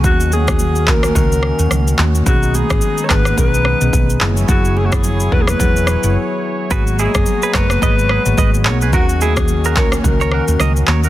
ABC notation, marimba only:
X:1
M:4/4
L:1/16
Q:"Swing 16ths" 1/4=108
K:D#phr
V:1 name="Marimba"
[D,A,CF]3 [D,A,CF] z2 [D,A,CF] z [D,A,CF] z2 [D,A,CF] z2 [D,A,CF] z | [D,B,CG]3 [D,B,CG] z2 [D,B,CG] z [D,B,CG] z2 [D,B,CG] z2 [F,B,EG] z | [F,B,EG]3 [F,B,EG] z2 [F,B,EG] z [F,B,EG] z2 [F,B,EG] z4 | [F,A,B,G]3 [F,A,B,G] z2 [F,A,B,G] z [F,A,B,G] z2 [F,A,B,G] z2 [F,A,B,G] z |
[D,A,CF]3 [D,A,CF] z2 [D,A,CF] z [D,A,CF] z2 [D,A,CF] z2 [D,A,CF] z |]